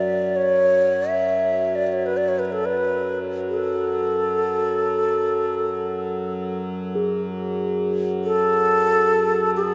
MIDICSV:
0, 0, Header, 1, 4, 480
1, 0, Start_track
1, 0, Key_signature, 3, "minor"
1, 0, Tempo, 500000
1, 9355, End_track
2, 0, Start_track
2, 0, Title_t, "Xiao"
2, 0, Program_c, 0, 77
2, 0, Note_on_c, 0, 74, 76
2, 347, Note_on_c, 0, 73, 89
2, 361, Note_off_c, 0, 74, 0
2, 1042, Note_on_c, 0, 76, 75
2, 1057, Note_off_c, 0, 73, 0
2, 1685, Note_on_c, 0, 74, 80
2, 1699, Note_off_c, 0, 76, 0
2, 1791, Note_off_c, 0, 74, 0
2, 1791, Note_on_c, 0, 74, 57
2, 1851, Note_on_c, 0, 73, 72
2, 1865, Note_off_c, 0, 74, 0
2, 1978, Note_on_c, 0, 71, 71
2, 1993, Note_off_c, 0, 73, 0
2, 2082, Note_on_c, 0, 74, 77
2, 2096, Note_off_c, 0, 71, 0
2, 2191, Note_on_c, 0, 73, 69
2, 2206, Note_off_c, 0, 74, 0
2, 2293, Note_on_c, 0, 71, 70
2, 2307, Note_off_c, 0, 73, 0
2, 2354, Note_off_c, 0, 71, 0
2, 2354, Note_on_c, 0, 71, 47
2, 2423, Note_on_c, 0, 69, 73
2, 2437, Note_off_c, 0, 71, 0
2, 2548, Note_on_c, 0, 71, 75
2, 2563, Note_off_c, 0, 69, 0
2, 3067, Note_off_c, 0, 71, 0
2, 3352, Note_on_c, 0, 69, 76
2, 6343, Note_off_c, 0, 69, 0
2, 7913, Note_on_c, 0, 69, 106
2, 9122, Note_off_c, 0, 69, 0
2, 9181, Note_on_c, 0, 68, 87
2, 9355, Note_off_c, 0, 68, 0
2, 9355, End_track
3, 0, Start_track
3, 0, Title_t, "Singing bowl"
3, 0, Program_c, 1, 14
3, 6676, Note_on_c, 1, 68, 43
3, 9355, Note_off_c, 1, 68, 0
3, 9355, End_track
4, 0, Start_track
4, 0, Title_t, "Harmonium"
4, 0, Program_c, 2, 20
4, 0, Note_on_c, 2, 42, 60
4, 9355, Note_off_c, 2, 42, 0
4, 9355, End_track
0, 0, End_of_file